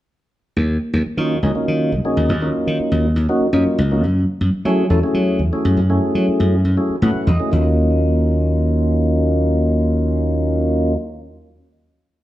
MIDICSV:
0, 0, Header, 1, 4, 480
1, 0, Start_track
1, 0, Key_signature, -6, "minor"
1, 0, Tempo, 497512
1, 543, Time_signature, 7, 3, 24, 8
1, 11804, End_track
2, 0, Start_track
2, 0, Title_t, "Tonewheel organ"
2, 0, Program_c, 0, 16
2, 1141, Note_on_c, 0, 54, 86
2, 1141, Note_on_c, 0, 65, 103
2, 1143, Note_on_c, 0, 58, 84
2, 1144, Note_on_c, 0, 63, 74
2, 1145, Note_on_c, 0, 61, 87
2, 1319, Note_off_c, 0, 54, 0
2, 1319, Note_off_c, 0, 65, 0
2, 1320, Note_off_c, 0, 58, 0
2, 1320, Note_off_c, 0, 63, 0
2, 1321, Note_off_c, 0, 61, 0
2, 1379, Note_on_c, 0, 54, 92
2, 1380, Note_on_c, 0, 58, 75
2, 1381, Note_on_c, 0, 61, 72
2, 1381, Note_on_c, 0, 63, 77
2, 1383, Note_on_c, 0, 68, 94
2, 1468, Note_off_c, 0, 54, 0
2, 1468, Note_off_c, 0, 58, 0
2, 1469, Note_off_c, 0, 61, 0
2, 1469, Note_off_c, 0, 63, 0
2, 1469, Note_off_c, 0, 68, 0
2, 1494, Note_on_c, 0, 58, 71
2, 1496, Note_on_c, 0, 54, 68
2, 1496, Note_on_c, 0, 61, 63
2, 1499, Note_on_c, 0, 63, 60
2, 1499, Note_on_c, 0, 65, 75
2, 1853, Note_off_c, 0, 58, 0
2, 1854, Note_off_c, 0, 54, 0
2, 1854, Note_off_c, 0, 61, 0
2, 1855, Note_off_c, 0, 63, 0
2, 1856, Note_off_c, 0, 65, 0
2, 1976, Note_on_c, 0, 54, 70
2, 1978, Note_on_c, 0, 58, 68
2, 1979, Note_on_c, 0, 61, 67
2, 1980, Note_on_c, 0, 63, 66
2, 1980, Note_on_c, 0, 68, 83
2, 2244, Note_off_c, 0, 54, 0
2, 2244, Note_off_c, 0, 58, 0
2, 2245, Note_off_c, 0, 61, 0
2, 2245, Note_off_c, 0, 63, 0
2, 2245, Note_off_c, 0, 68, 0
2, 2333, Note_on_c, 0, 61, 69
2, 2336, Note_on_c, 0, 58, 69
2, 2336, Note_on_c, 0, 63, 62
2, 2336, Note_on_c, 0, 65, 81
2, 2337, Note_on_c, 0, 54, 72
2, 2960, Note_off_c, 0, 61, 0
2, 2961, Note_off_c, 0, 54, 0
2, 2961, Note_off_c, 0, 58, 0
2, 2961, Note_off_c, 0, 63, 0
2, 2961, Note_off_c, 0, 65, 0
2, 3173, Note_on_c, 0, 63, 79
2, 3174, Note_on_c, 0, 61, 72
2, 3175, Note_on_c, 0, 58, 85
2, 3176, Note_on_c, 0, 54, 90
2, 3179, Note_on_c, 0, 66, 91
2, 3351, Note_off_c, 0, 61, 0
2, 3351, Note_off_c, 0, 63, 0
2, 3352, Note_off_c, 0, 54, 0
2, 3352, Note_off_c, 0, 58, 0
2, 3354, Note_off_c, 0, 66, 0
2, 3411, Note_on_c, 0, 54, 74
2, 3412, Note_on_c, 0, 58, 71
2, 3413, Note_on_c, 0, 61, 62
2, 3414, Note_on_c, 0, 63, 64
2, 3415, Note_on_c, 0, 65, 83
2, 3680, Note_off_c, 0, 54, 0
2, 3680, Note_off_c, 0, 58, 0
2, 3680, Note_off_c, 0, 61, 0
2, 3681, Note_off_c, 0, 63, 0
2, 3681, Note_off_c, 0, 65, 0
2, 3775, Note_on_c, 0, 63, 70
2, 3777, Note_on_c, 0, 54, 75
2, 3777, Note_on_c, 0, 61, 70
2, 3778, Note_on_c, 0, 58, 74
2, 3781, Note_on_c, 0, 65, 81
2, 3892, Note_off_c, 0, 63, 0
2, 3893, Note_off_c, 0, 54, 0
2, 3893, Note_off_c, 0, 58, 0
2, 3893, Note_off_c, 0, 61, 0
2, 3895, Note_off_c, 0, 65, 0
2, 4492, Note_on_c, 0, 57, 83
2, 4492, Note_on_c, 0, 64, 92
2, 4493, Note_on_c, 0, 54, 99
2, 4496, Note_on_c, 0, 61, 85
2, 4496, Note_on_c, 0, 68, 105
2, 4670, Note_off_c, 0, 57, 0
2, 4671, Note_off_c, 0, 54, 0
2, 4671, Note_off_c, 0, 64, 0
2, 4672, Note_off_c, 0, 61, 0
2, 4672, Note_off_c, 0, 68, 0
2, 4729, Note_on_c, 0, 57, 81
2, 4730, Note_on_c, 0, 54, 84
2, 4732, Note_on_c, 0, 64, 80
2, 4732, Note_on_c, 0, 69, 97
2, 4733, Note_on_c, 0, 61, 73
2, 4819, Note_off_c, 0, 54, 0
2, 4819, Note_off_c, 0, 57, 0
2, 4821, Note_off_c, 0, 61, 0
2, 4821, Note_off_c, 0, 64, 0
2, 4821, Note_off_c, 0, 69, 0
2, 4854, Note_on_c, 0, 61, 69
2, 4857, Note_on_c, 0, 57, 62
2, 4858, Note_on_c, 0, 64, 60
2, 4858, Note_on_c, 0, 68, 88
2, 4859, Note_on_c, 0, 54, 83
2, 5212, Note_off_c, 0, 61, 0
2, 5213, Note_off_c, 0, 57, 0
2, 5214, Note_off_c, 0, 54, 0
2, 5214, Note_off_c, 0, 64, 0
2, 5214, Note_off_c, 0, 68, 0
2, 5332, Note_on_c, 0, 57, 67
2, 5333, Note_on_c, 0, 61, 77
2, 5335, Note_on_c, 0, 54, 79
2, 5336, Note_on_c, 0, 64, 73
2, 5336, Note_on_c, 0, 68, 95
2, 5601, Note_off_c, 0, 57, 0
2, 5602, Note_off_c, 0, 61, 0
2, 5603, Note_off_c, 0, 54, 0
2, 5603, Note_off_c, 0, 68, 0
2, 5604, Note_off_c, 0, 64, 0
2, 5689, Note_on_c, 0, 61, 74
2, 5690, Note_on_c, 0, 54, 73
2, 5691, Note_on_c, 0, 57, 76
2, 5692, Note_on_c, 0, 64, 66
2, 5693, Note_on_c, 0, 68, 83
2, 6322, Note_off_c, 0, 54, 0
2, 6322, Note_off_c, 0, 61, 0
2, 6323, Note_off_c, 0, 57, 0
2, 6323, Note_off_c, 0, 64, 0
2, 6324, Note_off_c, 0, 68, 0
2, 6532, Note_on_c, 0, 54, 75
2, 6535, Note_on_c, 0, 57, 83
2, 6536, Note_on_c, 0, 61, 78
2, 6536, Note_on_c, 0, 64, 76
2, 6537, Note_on_c, 0, 68, 93
2, 6714, Note_off_c, 0, 54, 0
2, 6715, Note_off_c, 0, 57, 0
2, 6716, Note_off_c, 0, 61, 0
2, 6716, Note_off_c, 0, 64, 0
2, 6716, Note_off_c, 0, 68, 0
2, 6776, Note_on_c, 0, 57, 68
2, 6776, Note_on_c, 0, 71, 79
2, 6777, Note_on_c, 0, 54, 76
2, 6777, Note_on_c, 0, 64, 65
2, 6779, Note_on_c, 0, 78, 66
2, 6780, Note_on_c, 0, 61, 71
2, 7001, Note_off_c, 0, 78, 0
2, 7013, Note_on_c, 0, 75, 60
2, 7046, Note_off_c, 0, 57, 0
2, 7047, Note_off_c, 0, 54, 0
2, 7047, Note_off_c, 0, 64, 0
2, 7047, Note_off_c, 0, 71, 0
2, 7049, Note_off_c, 0, 61, 0
2, 7136, Note_on_c, 0, 68, 82
2, 7137, Note_on_c, 0, 54, 64
2, 7137, Note_on_c, 0, 57, 68
2, 7138, Note_on_c, 0, 64, 66
2, 7139, Note_on_c, 0, 61, 72
2, 7239, Note_off_c, 0, 75, 0
2, 7240, Note_off_c, 0, 54, 0
2, 7242, Note_off_c, 0, 61, 0
2, 7251, Note_on_c, 0, 58, 60
2, 7252, Note_on_c, 0, 54, 69
2, 7253, Note_on_c, 0, 61, 64
2, 7253, Note_on_c, 0, 63, 70
2, 7253, Note_on_c, 0, 65, 74
2, 7257, Note_off_c, 0, 57, 0
2, 7257, Note_off_c, 0, 68, 0
2, 7258, Note_off_c, 0, 64, 0
2, 10555, Note_off_c, 0, 58, 0
2, 10557, Note_off_c, 0, 54, 0
2, 10558, Note_off_c, 0, 61, 0
2, 10558, Note_off_c, 0, 63, 0
2, 10558, Note_off_c, 0, 65, 0
2, 11804, End_track
3, 0, Start_track
3, 0, Title_t, "Slap bass"
3, 0, Program_c, 1, 36
3, 545, Note_on_c, 1, 39, 74
3, 739, Note_off_c, 1, 39, 0
3, 901, Note_on_c, 1, 39, 82
3, 998, Note_off_c, 1, 39, 0
3, 1132, Note_on_c, 1, 51, 86
3, 1330, Note_off_c, 1, 51, 0
3, 1375, Note_on_c, 1, 37, 65
3, 1473, Note_off_c, 1, 37, 0
3, 1620, Note_on_c, 1, 51, 64
3, 1854, Note_on_c, 1, 37, 82
3, 1869, Note_off_c, 1, 51, 0
3, 1952, Note_off_c, 1, 37, 0
3, 2092, Note_on_c, 1, 39, 86
3, 2190, Note_off_c, 1, 39, 0
3, 2211, Note_on_c, 1, 39, 79
3, 2407, Note_off_c, 1, 39, 0
3, 2579, Note_on_c, 1, 51, 73
3, 2673, Note_off_c, 1, 51, 0
3, 2813, Note_on_c, 1, 39, 84
3, 3008, Note_off_c, 1, 39, 0
3, 3048, Note_on_c, 1, 39, 82
3, 3146, Note_off_c, 1, 39, 0
3, 3403, Note_on_c, 1, 42, 89
3, 3504, Note_off_c, 1, 42, 0
3, 3651, Note_on_c, 1, 37, 97
3, 3891, Note_off_c, 1, 37, 0
3, 3891, Note_on_c, 1, 42, 79
3, 4086, Note_off_c, 1, 42, 0
3, 4252, Note_on_c, 1, 42, 74
3, 4349, Note_off_c, 1, 42, 0
3, 4488, Note_on_c, 1, 54, 95
3, 4684, Note_off_c, 1, 54, 0
3, 4726, Note_on_c, 1, 40, 68
3, 4825, Note_off_c, 1, 40, 0
3, 4963, Note_on_c, 1, 54, 74
3, 5201, Note_on_c, 1, 40, 78
3, 5216, Note_off_c, 1, 54, 0
3, 5303, Note_off_c, 1, 40, 0
3, 5450, Note_on_c, 1, 42, 94
3, 5548, Note_off_c, 1, 42, 0
3, 5568, Note_on_c, 1, 42, 84
3, 5766, Note_off_c, 1, 42, 0
3, 5934, Note_on_c, 1, 54, 70
3, 6032, Note_off_c, 1, 54, 0
3, 6174, Note_on_c, 1, 42, 83
3, 6370, Note_off_c, 1, 42, 0
3, 6413, Note_on_c, 1, 42, 83
3, 6512, Note_off_c, 1, 42, 0
3, 6773, Note_on_c, 1, 45, 92
3, 6872, Note_off_c, 1, 45, 0
3, 7013, Note_on_c, 1, 40, 90
3, 7113, Note_off_c, 1, 40, 0
3, 7259, Note_on_c, 1, 39, 80
3, 10564, Note_off_c, 1, 39, 0
3, 11804, End_track
4, 0, Start_track
4, 0, Title_t, "Muted slap bass strokes"
4, 1023, Note_on_c, 9, 29, 34
4, 1120, Note_off_c, 9, 29, 0
4, 1499, Note_on_c, 9, 29, 30
4, 1596, Note_off_c, 9, 29, 0
4, 1974, Note_on_c, 9, 29, 31
4, 2071, Note_off_c, 9, 29, 0
4, 2698, Note_on_c, 9, 29, 34
4, 2794, Note_off_c, 9, 29, 0
4, 3286, Note_on_c, 9, 29, 31
4, 3382, Note_off_c, 9, 29, 0
4, 3531, Note_on_c, 9, 29, 36
4, 3628, Note_off_c, 9, 29, 0
4, 4373, Note_on_c, 9, 29, 35
4, 4470, Note_off_c, 9, 29, 0
4, 4847, Note_on_c, 9, 29, 33
4, 4943, Note_off_c, 9, 29, 0
4, 5330, Note_on_c, 9, 29, 32
4, 5426, Note_off_c, 9, 29, 0
4, 6060, Note_on_c, 9, 29, 35
4, 6156, Note_off_c, 9, 29, 0
4, 6653, Note_on_c, 9, 29, 30
4, 6749, Note_off_c, 9, 29, 0
4, 6898, Note_on_c, 9, 29, 36
4, 6995, Note_off_c, 9, 29, 0
4, 11804, End_track
0, 0, End_of_file